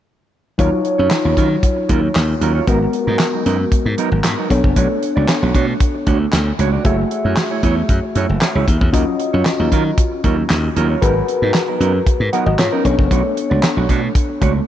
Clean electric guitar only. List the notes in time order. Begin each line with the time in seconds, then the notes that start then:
0.59 F#3 C#4 F4 A#4
0.73 muted clean electric guitar stroke
0.85 muted clean electric guitar stroke
0.98 F#3 C#4 F4 C#5
1.11 muted clean electric guitar stroke
1.24 F#3 C#4 F4 A#4
1.37 F#3 C#4 F4 A#4
1.50 muted clean electric guitar stroke
1.77 muted clean electric guitar stroke
1.89 F#3 C#4 F4 A#4
2.03 muted clean electric guitar stroke
2.29 muted clean electric guitar stroke
2.41 F#3 C#4 F4 A#4
2.55 F#3 C#4 F4 C#5
2.67 F#3 B3 D#4 A#4
2.81 muted clean electric guitar stroke
2.94 muted clean electric guitar stroke
3.07 F#3 B3 D#4 A#4
3.33 F#3 B3 D#4 A#4
3.46 F#3 B3 D#4 A#4
3.60 muted clean electric guitar stroke
3.86 muted clean electric guitar stroke
3.98 F#3 B3 D#4 A#4
4.12 muted clean electric guitar stroke
4.24 muted clean electric guitar stroke
4.38 F#3 B3 D#4 A#4
4.64 muted clean electric guitar stroke
4.76 A3 D4 F#4 C#5
4.90 muted clean electric guitar stroke
5.02 muted clean electric guitar stroke
5.16 A3 D4 F#4 D5
5.28 muted clean electric guitar stroke
5.42 A3 D4 F#4 C#5
5.54 A3 D4 F#4 C#5
5.68 muted clean electric guitar stroke
5.94 muted clean electric guitar stroke
6.07 A3 D4 F#4 C#5
6.20 muted clean electric guitar stroke
6.33 muted clean electric guitar stroke
6.47 muted clean electric guitar stroke
6.59 A3 D4 F#4 C#5
6.72 A3 D4 F#4 D5
6.85 A3 E4 G#4 C#5
6.99 muted clean electric guitar stroke
7.11 muted clean electric guitar stroke
7.24 A3 E4 G#4 C#5
7.37 muted clean electric guitar stroke
7.51 A3 E4 G#4 C#5
7.63 A3 E4 G#4 C#5
7.77 muted clean electric guitar stroke
8.03 muted clean electric guitar stroke
8.15 A3 E4 G#4 C#5
8.29 muted clean electric guitar stroke
8.42 muted clean electric guitar stroke
8.55 A3 E4 G#4 C#5
8.67 muted clean electric guitar stroke
8.81 muted clean electric guitar stroke
8.93 F#3 C#4 F4 A#4
9.07 muted clean electric guitar stroke
9.20 muted clean electric guitar stroke
9.33 F#3 C#4 F4 C#5
9.59 F#3 C#4 F4 A#4
9.72 F#3 C#4 F4 A#4
9.86 muted clean electric guitar stroke
10.12 muted clean electric guitar stroke
10.24 F#3 C#4 F4 A#4
10.38 muted clean electric guitar stroke
10.50 muted clean electric guitar stroke
10.64 muted clean electric guitar stroke
10.76 F#3 C#4 F4 A#4
10.90 F#3 C#4 F4 C#5
11.02 F#3 B3 D#4 A#4
11.16 muted clean electric guitar stroke
11.28 muted clean electric guitar stroke
11.42 F#3 B3 D#4 A#4
11.54 muted clean electric guitar stroke
11.68 F#3 B3 D#4 A#4
11.80 F#3 B3 D#4 A#4
11.95 muted clean electric guitar stroke
12.21 muted clean electric guitar stroke
12.33 F#3 B3 D#4 A#4
12.47 muted clean electric guitar stroke
12.59 muted clean electric guitar stroke
12.72 F#3 B3 D#4 A#4
12.85 muted clean electric guitar stroke
12.98 muted clean electric guitar stroke
13.11 A3 D4 F#4 C#5
13.25 muted clean electric guitar stroke
13.36 muted clean electric guitar stroke
13.50 A3 D4 F#4 D5
13.62 muted clean electric guitar stroke
13.76 A3 D4 F#4 C#5
13.88 A3 D4 F#4 C#5
14.02 muted clean electric guitar stroke
14.29 muted clean electric guitar stroke
14.41 A3 D4 F#4 C#5
14.55 muted clean electric guitar stroke